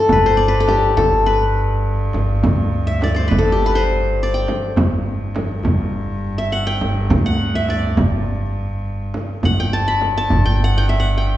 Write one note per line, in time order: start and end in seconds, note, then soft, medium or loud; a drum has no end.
0.00 0.60 A4 medium
0.09 0.93 G1 medium
0.09 4.76 G2 medium
0.09 0.32 B4 medium
0.09 darbuka dum medium
0.09 frame drum medium
0.24 0.54 C5 medium
0.24 darbuka ka soft
0.37 1.36 D5 medium
0.48 1.26 B4 medium
0.60 0.97 A4 medium
0.68 1.94 G4 medium
0.68 darbuka tek medium
0.68 frame drum medium
0.83 darbuka ka soft
0.97 2.10 G1 medium
0.97 2.14 A4 medium
0.97 darbuka dum medium
0.97 frame drum medium
1.26 2.41 B4 medium
1.26 darbuka ka soft
2.13 2.42 G1 medium
2.13 darbuka tek medium
2.13 frame drum medium
2.43 3.27 D2 loud
2.43 darbuka dum medium
2.43 frame drum medium
2.58 darbuka ka soft
2.72 darbuka ka soft
2.87 3.79 E5 medium
2.87 darbuka ka soft
3.01 3.14 D5 medium
3.01 darbuka tek medium
3.01 frame drum medium
3.14 3.34 C5 medium
3.14 4.13 D5 medium
3.28 4.44 G1 medium
3.28 3.66 B4 medium
3.28 darbuka dum medium
3.28 frame drum medium
3.39 4.56 A4 medium
3.52 4.78 G4 medium
3.60 darbuka ka soft
3.66 3.81 B4 medium
3.75 4.81 C5 medium
3.89 darbuka ka soft
4.23 5.21 D5 medium
4.34 5.41 G5 medium
4.47 darbuka tek medium
4.47 frame drum medium
4.76 5.61 G1 medium
4.76 9.42 G2 medium
4.76 darbuka dum loud
4.76 frame drum loud
4.91 darbuka ka soft
5.35 darbuka tek medium
5.35 frame drum medium
5.49 darbuka ka soft
5.63 6.77 G1 medium
5.63 darbuka dum loud
5.63 frame drum medium
5.93 darbuka ka soft
6.38 7.30 E5 medium
6.52 6.73 F#5 medium
6.67 7.32 G5 loud
6.81 7.09 G1 medium
6.81 darbuka tek medium
6.81 frame drum medium
7.10 7.94 D2 loud
7.10 frame drum loud
7.10 darbuka dum medium
7.25 8.12 F#5 medium
7.25 darbuka ka soft
7.55 8.47 E5 medium
7.68 8.88 D5 medium
7.68 darbuka tek medium
7.68 frame drum medium
7.83 darbuka ka soft
7.97 9.11 G1 medium
7.97 darbuka dum medium
7.97 frame drum medium
8.27 darbuka ka soft
9.14 darbuka tek medium
9.14 frame drum medium
9.42 10.27 G1 loud
9.42 11.37 G2 medium
9.42 9.66 F#5 medium
9.42 frame drum medium
9.42 darbuka dum medium
9.57 10.43 G5 medium
9.57 darbuka ka soft
9.73 10.17 A5 loud
9.88 10.60 B5 loud
10.01 darbuka tek medium
10.01 frame drum medium
10.16 10.95 A5 loud
10.16 darbuka ka soft
10.30 11.37 G1 medium
10.30 darbuka dum medium
10.30 frame drum medium
10.46 10.70 G5 medium
10.60 darbuka ka soft
10.64 10.84 F#5 medium
10.78 11.06 G5 medium
10.89 11.37 E5 medium
11.00 11.24 F#5 medium
11.18 11.37 G5 medium